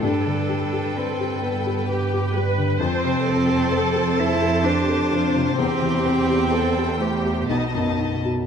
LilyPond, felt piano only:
\new Staff \with { instrumentName = "Felt piano" } { \time 3/4 \key c \major \tempo 4 = 64 g,16 d16 g16 g'16 b'16 g'16 b'16 g'16 b'16 g'16 g16 d16 | f,16 c16 c'16 a'16 c''16 a'16 c''16 a'16 c''16 a'16 c'16 c16 | e,16 e16 c'16 g'16 c''16 g'16 c''16 g'16 b,,16 fis,16 dis'16 fis'16 | }